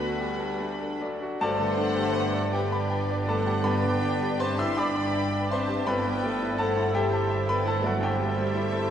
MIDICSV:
0, 0, Header, 1, 12, 480
1, 0, Start_track
1, 0, Key_signature, 1, "major"
1, 0, Tempo, 816327
1, 827, Time_signature, 12, 3, 24, 8
1, 827, Tempo, 748130
1, 3227, Tempo, 717703
1, 5739, End_track
2, 0, Start_track
2, 0, Title_t, "Violin section"
2, 0, Program_c, 0, 48
2, 0, Note_on_c, 0, 62, 61
2, 0, Note_on_c, 0, 66, 80
2, 107, Note_on_c, 0, 57, 62
2, 109, Note_off_c, 0, 62, 0
2, 229, Note_off_c, 0, 57, 0
2, 230, Note_on_c, 0, 62, 64
2, 352, Note_off_c, 0, 62, 0
2, 354, Note_on_c, 0, 57, 61
2, 475, Note_off_c, 0, 57, 0
2, 476, Note_on_c, 0, 62, 69
2, 596, Note_on_c, 0, 57, 58
2, 597, Note_off_c, 0, 62, 0
2, 706, Note_off_c, 0, 66, 0
2, 715, Note_off_c, 0, 57, 0
2, 717, Note_on_c, 0, 62, 61
2, 828, Note_off_c, 0, 62, 0
2, 832, Note_on_c, 0, 78, 103
2, 1522, Note_off_c, 0, 78, 0
2, 1555, Note_on_c, 0, 74, 76
2, 2032, Note_off_c, 0, 74, 0
2, 2035, Note_on_c, 0, 78, 81
2, 2267, Note_off_c, 0, 78, 0
2, 2268, Note_on_c, 0, 79, 97
2, 2748, Note_off_c, 0, 79, 0
2, 2751, Note_on_c, 0, 81, 84
2, 2865, Note_on_c, 0, 84, 90
2, 2870, Note_off_c, 0, 81, 0
2, 2987, Note_off_c, 0, 84, 0
2, 2992, Note_on_c, 0, 83, 86
2, 3468, Note_on_c, 0, 81, 81
2, 3471, Note_off_c, 0, 83, 0
2, 3702, Note_on_c, 0, 79, 90
2, 3704, Note_off_c, 0, 81, 0
2, 4184, Note_on_c, 0, 78, 80
2, 4186, Note_off_c, 0, 79, 0
2, 4422, Note_off_c, 0, 78, 0
2, 4426, Note_on_c, 0, 76, 76
2, 4784, Note_on_c, 0, 79, 74
2, 4787, Note_off_c, 0, 76, 0
2, 4905, Note_off_c, 0, 79, 0
2, 4905, Note_on_c, 0, 78, 78
2, 5024, Note_off_c, 0, 78, 0
2, 5026, Note_on_c, 0, 74, 76
2, 5144, Note_off_c, 0, 74, 0
2, 5149, Note_on_c, 0, 76, 95
2, 5739, Note_off_c, 0, 76, 0
2, 5739, End_track
3, 0, Start_track
3, 0, Title_t, "Flute section"
3, 0, Program_c, 1, 73
3, 0, Note_on_c, 1, 71, 100
3, 596, Note_off_c, 1, 71, 0
3, 830, Note_on_c, 1, 72, 108
3, 1522, Note_off_c, 1, 72, 0
3, 1551, Note_on_c, 1, 71, 86
3, 2030, Note_off_c, 1, 71, 0
3, 2032, Note_on_c, 1, 72, 80
3, 2263, Note_on_c, 1, 74, 87
3, 2266, Note_off_c, 1, 72, 0
3, 2746, Note_off_c, 1, 74, 0
3, 2749, Note_on_c, 1, 76, 85
3, 2864, Note_on_c, 1, 79, 82
3, 2869, Note_off_c, 1, 76, 0
3, 2978, Note_off_c, 1, 79, 0
3, 2986, Note_on_c, 1, 79, 95
3, 3458, Note_off_c, 1, 79, 0
3, 3462, Note_on_c, 1, 76, 89
3, 3705, Note_off_c, 1, 76, 0
3, 3712, Note_on_c, 1, 74, 90
3, 4191, Note_off_c, 1, 74, 0
3, 4194, Note_on_c, 1, 72, 87
3, 4425, Note_off_c, 1, 72, 0
3, 4433, Note_on_c, 1, 72, 86
3, 4783, Note_off_c, 1, 72, 0
3, 4798, Note_on_c, 1, 74, 76
3, 4909, Note_on_c, 1, 72, 80
3, 4912, Note_off_c, 1, 74, 0
3, 5024, Note_off_c, 1, 72, 0
3, 5026, Note_on_c, 1, 69, 76
3, 5144, Note_off_c, 1, 69, 0
3, 5154, Note_on_c, 1, 72, 86
3, 5739, Note_off_c, 1, 72, 0
3, 5739, End_track
4, 0, Start_track
4, 0, Title_t, "Grand piano"
4, 0, Program_c, 2, 0
4, 0, Control_c, 2, 64, 127
4, 0, Note_on_c, 2, 38, 82
4, 0, Note_on_c, 2, 62, 59
4, 0, Note_on_c, 2, 66, 66
4, 0, Note_on_c, 2, 69, 62
4, 61, Note_off_c, 2, 62, 0
4, 115, Note_on_c, 2, 67, 52
4, 182, Note_off_c, 2, 69, 0
4, 230, Note_on_c, 2, 69, 64
4, 232, Note_off_c, 2, 67, 0
4, 353, Note_on_c, 2, 62, 52
4, 425, Note_off_c, 2, 69, 0
4, 473, Note_on_c, 2, 69, 59
4, 548, Note_off_c, 2, 62, 0
4, 596, Note_on_c, 2, 74, 61
4, 668, Note_off_c, 2, 69, 0
4, 719, Note_off_c, 2, 66, 0
4, 719, Note_on_c, 2, 66, 63
4, 783, Note_off_c, 2, 74, 0
4, 803, Note_off_c, 2, 38, 0
4, 829, Note_off_c, 2, 66, 0
4, 829, Note_on_c, 2, 81, 109
4, 831, Note_on_c, 2, 43, 84
4, 838, Control_c, 2, 64, 0
4, 840, Note_on_c, 2, 69, 86
4, 840, Note_on_c, 2, 74, 95
4, 943, Control_c, 2, 64, 127
4, 949, Note_on_c, 2, 50, 61
4, 1064, Note_on_c, 2, 62, 68
4, 1136, Note_off_c, 2, 50, 0
4, 1184, Note_on_c, 2, 67, 69
4, 1254, Note_off_c, 2, 62, 0
4, 1303, Note_on_c, 2, 71, 76
4, 1376, Note_off_c, 2, 67, 0
4, 1412, Note_off_c, 2, 74, 0
4, 1422, Note_on_c, 2, 74, 67
4, 1497, Note_off_c, 2, 71, 0
4, 1521, Note_off_c, 2, 81, 0
4, 1527, Note_off_c, 2, 69, 0
4, 1550, Note_off_c, 2, 74, 0
4, 1550, Note_on_c, 2, 79, 70
4, 1558, Note_on_c, 2, 67, 53
4, 1560, Note_on_c, 2, 74, 57
4, 1672, Note_on_c, 2, 83, 75
4, 1742, Note_off_c, 2, 79, 0
4, 1785, Note_on_c, 2, 79, 72
4, 1863, Note_off_c, 2, 83, 0
4, 1905, Note_off_c, 2, 74, 0
4, 1915, Note_on_c, 2, 74, 72
4, 1978, Note_off_c, 2, 79, 0
4, 2008, Note_off_c, 2, 67, 0
4, 2029, Note_on_c, 2, 71, 68
4, 2033, Note_on_c, 2, 81, 91
4, 2037, Note_on_c, 2, 69, 75
4, 2101, Note_off_c, 2, 74, 0
4, 2147, Note_on_c, 2, 67, 72
4, 2217, Note_off_c, 2, 71, 0
4, 2240, Note_off_c, 2, 43, 0
4, 2250, Note_off_c, 2, 81, 0
4, 2253, Note_off_c, 2, 69, 0
4, 2259, Note_on_c, 2, 83, 96
4, 2261, Note_on_c, 2, 43, 75
4, 2269, Note_on_c, 2, 79, 68
4, 2274, Note_on_c, 2, 71, 80
4, 2336, Note_off_c, 2, 67, 0
4, 2380, Note_on_c, 2, 50, 57
4, 2502, Note_on_c, 2, 62, 67
4, 2575, Note_off_c, 2, 50, 0
4, 2628, Note_on_c, 2, 67, 68
4, 2697, Note_off_c, 2, 62, 0
4, 2718, Note_off_c, 2, 83, 0
4, 2723, Note_off_c, 2, 79, 0
4, 2725, Note_off_c, 2, 71, 0
4, 2742, Note_on_c, 2, 71, 65
4, 2747, Note_on_c, 2, 84, 102
4, 2756, Note_on_c, 2, 72, 74
4, 2821, Note_off_c, 2, 67, 0
4, 2859, Note_off_c, 2, 84, 0
4, 2864, Note_off_c, 2, 72, 0
4, 2864, Note_on_c, 2, 74, 63
4, 2870, Note_on_c, 2, 88, 111
4, 2877, Note_on_c, 2, 76, 81
4, 2938, Note_off_c, 2, 71, 0
4, 2981, Note_off_c, 2, 88, 0
4, 2984, Note_on_c, 2, 79, 77
4, 2985, Note_off_c, 2, 76, 0
4, 2987, Note_off_c, 2, 74, 0
4, 2990, Note_on_c, 2, 86, 94
4, 2995, Note_on_c, 2, 83, 77
4, 2997, Note_on_c, 2, 74, 83
4, 3097, Note_off_c, 2, 83, 0
4, 3106, Note_on_c, 2, 83, 71
4, 3177, Note_off_c, 2, 79, 0
4, 3223, Note_on_c, 2, 79, 64
4, 3298, Note_off_c, 2, 83, 0
4, 3332, Note_off_c, 2, 74, 0
4, 3342, Note_on_c, 2, 74, 58
4, 3419, Note_off_c, 2, 79, 0
4, 3442, Note_off_c, 2, 86, 0
4, 3464, Note_on_c, 2, 71, 66
4, 3473, Note_on_c, 2, 84, 95
4, 3482, Note_on_c, 2, 72, 72
4, 3538, Note_off_c, 2, 74, 0
4, 3582, Note_on_c, 2, 67, 67
4, 3659, Note_off_c, 2, 71, 0
4, 3680, Note_off_c, 2, 43, 0
4, 3694, Note_off_c, 2, 84, 0
4, 3699, Note_off_c, 2, 72, 0
4, 3705, Note_off_c, 2, 67, 0
4, 3708, Note_on_c, 2, 83, 101
4, 3712, Note_on_c, 2, 43, 81
4, 3719, Note_on_c, 2, 71, 83
4, 3721, Control_c, 2, 64, 0
4, 3810, Control_c, 2, 64, 127
4, 3838, Note_on_c, 2, 55, 64
4, 3955, Note_on_c, 2, 57, 69
4, 4026, Note_off_c, 2, 55, 0
4, 4079, Note_on_c, 2, 64, 70
4, 4145, Note_off_c, 2, 57, 0
4, 4162, Note_off_c, 2, 83, 0
4, 4168, Note_off_c, 2, 71, 0
4, 4188, Note_on_c, 2, 81, 98
4, 4193, Note_on_c, 2, 69, 65
4, 4267, Note_off_c, 2, 64, 0
4, 4313, Note_on_c, 2, 64, 66
4, 4384, Note_off_c, 2, 69, 0
4, 4412, Note_off_c, 2, 81, 0
4, 4430, Note_on_c, 2, 79, 88
4, 4431, Note_on_c, 2, 76, 81
4, 4434, Note_on_c, 2, 67, 71
4, 4504, Note_off_c, 2, 64, 0
4, 4552, Note_on_c, 2, 81, 74
4, 4622, Note_off_c, 2, 76, 0
4, 4673, Note_on_c, 2, 76, 74
4, 4742, Note_off_c, 2, 81, 0
4, 4764, Note_off_c, 2, 79, 0
4, 4766, Note_off_c, 2, 67, 0
4, 4790, Note_on_c, 2, 69, 61
4, 4794, Note_on_c, 2, 83, 96
4, 4803, Note_on_c, 2, 71, 73
4, 4862, Note_off_c, 2, 76, 0
4, 4902, Note_off_c, 2, 83, 0
4, 4904, Note_on_c, 2, 64, 73
4, 4907, Note_off_c, 2, 71, 0
4, 4915, Note_off_c, 2, 69, 0
4, 4915, Note_on_c, 2, 81, 93
4, 4925, Note_on_c, 2, 69, 77
4, 5018, Note_on_c, 2, 57, 74
4, 5021, Note_off_c, 2, 81, 0
4, 5027, Note_off_c, 2, 69, 0
4, 5044, Note_on_c, 2, 78, 78
4, 5048, Note_on_c, 2, 66, 62
4, 5095, Note_off_c, 2, 64, 0
4, 5119, Note_off_c, 2, 43, 0
4, 5140, Note_on_c, 2, 43, 81
4, 5145, Note_off_c, 2, 78, 0
4, 5148, Note_off_c, 2, 66, 0
4, 5155, Note_on_c, 2, 79, 87
4, 5161, Note_on_c, 2, 76, 67
4, 5162, Note_on_c, 2, 67, 62
4, 5211, Note_off_c, 2, 57, 0
4, 5260, Note_on_c, 2, 55, 58
4, 5378, Note_on_c, 2, 57, 67
4, 5455, Note_off_c, 2, 55, 0
4, 5503, Note_on_c, 2, 64, 69
4, 5575, Note_off_c, 2, 57, 0
4, 5615, Note_on_c, 2, 69, 74
4, 5697, Note_off_c, 2, 64, 0
4, 5739, Note_off_c, 2, 43, 0
4, 5739, Note_off_c, 2, 67, 0
4, 5739, Note_off_c, 2, 69, 0
4, 5739, Note_off_c, 2, 76, 0
4, 5739, Note_off_c, 2, 79, 0
4, 5739, End_track
5, 0, Start_track
5, 0, Title_t, "Oboe"
5, 0, Program_c, 3, 68
5, 0, Note_on_c, 3, 71, 90
5, 569, Note_off_c, 3, 71, 0
5, 826, Note_on_c, 3, 74, 75
5, 3681, Note_off_c, 3, 74, 0
5, 3708, Note_on_c, 3, 69, 76
5, 5739, Note_off_c, 3, 69, 0
5, 5739, End_track
6, 0, Start_track
6, 0, Title_t, "Violin section"
6, 0, Program_c, 4, 48
6, 0, Note_on_c, 4, 83, 110
6, 571, Note_off_c, 4, 83, 0
6, 827, Note_on_c, 4, 71, 81
6, 1520, Note_off_c, 4, 71, 0
6, 1544, Note_on_c, 4, 71, 68
6, 2248, Note_off_c, 4, 71, 0
6, 2263, Note_on_c, 4, 71, 82
6, 2973, Note_off_c, 4, 71, 0
6, 2986, Note_on_c, 4, 71, 73
6, 3693, Note_off_c, 4, 71, 0
6, 3707, Note_on_c, 4, 69, 85
6, 4426, Note_off_c, 4, 69, 0
6, 4434, Note_on_c, 4, 69, 70
6, 5131, Note_off_c, 4, 69, 0
6, 5144, Note_on_c, 4, 69, 77
6, 5739, Note_off_c, 4, 69, 0
6, 5739, End_track
7, 0, Start_track
7, 0, Title_t, "Viola section"
7, 0, Program_c, 5, 48
7, 0, Note_on_c, 5, 50, 82
7, 105, Note_on_c, 5, 55, 92
7, 106, Note_off_c, 5, 50, 0
7, 594, Note_off_c, 5, 55, 0
7, 594, Note_on_c, 5, 54, 68
7, 822, Note_on_c, 5, 69, 109
7, 826, Note_off_c, 5, 54, 0
7, 1517, Note_off_c, 5, 69, 0
7, 1547, Note_on_c, 5, 67, 84
7, 2028, Note_off_c, 5, 67, 0
7, 2030, Note_on_c, 5, 69, 75
7, 2265, Note_off_c, 5, 69, 0
7, 2266, Note_on_c, 5, 71, 87
7, 2747, Note_off_c, 5, 71, 0
7, 2747, Note_on_c, 5, 72, 81
7, 2864, Note_on_c, 5, 76, 83
7, 2868, Note_off_c, 5, 72, 0
7, 2987, Note_off_c, 5, 76, 0
7, 2987, Note_on_c, 5, 74, 99
7, 3464, Note_on_c, 5, 72, 75
7, 3468, Note_off_c, 5, 74, 0
7, 3702, Note_off_c, 5, 72, 0
7, 3709, Note_on_c, 5, 71, 89
7, 4190, Note_off_c, 5, 71, 0
7, 4190, Note_on_c, 5, 69, 76
7, 4425, Note_on_c, 5, 67, 94
7, 4430, Note_off_c, 5, 69, 0
7, 4786, Note_off_c, 5, 67, 0
7, 4788, Note_on_c, 5, 71, 80
7, 4906, Note_on_c, 5, 69, 85
7, 4907, Note_off_c, 5, 71, 0
7, 5025, Note_off_c, 5, 69, 0
7, 5025, Note_on_c, 5, 66, 75
7, 5141, Note_on_c, 5, 67, 93
7, 5143, Note_off_c, 5, 66, 0
7, 5739, Note_off_c, 5, 67, 0
7, 5739, End_track
8, 0, Start_track
8, 0, Title_t, "Clarinet"
8, 0, Program_c, 6, 71
8, 0, Note_on_c, 6, 71, 90
8, 596, Note_off_c, 6, 71, 0
8, 827, Note_on_c, 6, 62, 81
8, 3682, Note_off_c, 6, 62, 0
8, 3713, Note_on_c, 6, 64, 76
8, 5739, Note_off_c, 6, 64, 0
8, 5739, End_track
9, 0, Start_track
9, 0, Title_t, "Bassoon"
9, 0, Program_c, 7, 70
9, 831, Note_on_c, 7, 59, 83
9, 3684, Note_off_c, 7, 59, 0
9, 3712, Note_on_c, 7, 60, 80
9, 5739, Note_off_c, 7, 60, 0
9, 5739, End_track
10, 0, Start_track
10, 0, Title_t, "French horn section"
10, 0, Program_c, 8, 60
10, 0, Note_on_c, 8, 59, 95
10, 594, Note_off_c, 8, 59, 0
10, 830, Note_on_c, 8, 57, 106
10, 1522, Note_off_c, 8, 57, 0
10, 1553, Note_on_c, 8, 55, 82
10, 2031, Note_off_c, 8, 55, 0
10, 2033, Note_on_c, 8, 57, 90
10, 2262, Note_off_c, 8, 57, 0
10, 2263, Note_on_c, 8, 59, 88
10, 2746, Note_off_c, 8, 59, 0
10, 2748, Note_on_c, 8, 60, 81
10, 2869, Note_off_c, 8, 60, 0
10, 2873, Note_on_c, 8, 64, 84
10, 2991, Note_off_c, 8, 64, 0
10, 2992, Note_on_c, 8, 62, 91
10, 3469, Note_on_c, 8, 60, 80
10, 3470, Note_off_c, 8, 62, 0
10, 3709, Note_off_c, 8, 60, 0
10, 3714, Note_on_c, 8, 59, 90
10, 4183, Note_off_c, 8, 59, 0
10, 4195, Note_on_c, 8, 57, 82
10, 4429, Note_on_c, 8, 55, 75
10, 4433, Note_off_c, 8, 57, 0
10, 4787, Note_on_c, 8, 59, 79
10, 4789, Note_off_c, 8, 55, 0
10, 4904, Note_on_c, 8, 57, 88
10, 4906, Note_off_c, 8, 59, 0
10, 5023, Note_off_c, 8, 57, 0
10, 5026, Note_on_c, 8, 54, 79
10, 5144, Note_off_c, 8, 54, 0
10, 5146, Note_on_c, 8, 55, 85
10, 5739, Note_off_c, 8, 55, 0
10, 5739, End_track
11, 0, Start_track
11, 0, Title_t, "Cello section"
11, 0, Program_c, 10, 48
11, 831, Note_on_c, 10, 43, 83
11, 3684, Note_off_c, 10, 43, 0
11, 3709, Note_on_c, 10, 43, 72
11, 5739, Note_off_c, 10, 43, 0
11, 5739, End_track
12, 0, Start_track
12, 0, Title_t, "Double bass section"
12, 0, Program_c, 11, 48
12, 828, Note_on_c, 11, 31, 88
12, 3683, Note_off_c, 11, 31, 0
12, 3710, Note_on_c, 11, 31, 90
12, 5739, Note_off_c, 11, 31, 0
12, 5739, End_track
0, 0, End_of_file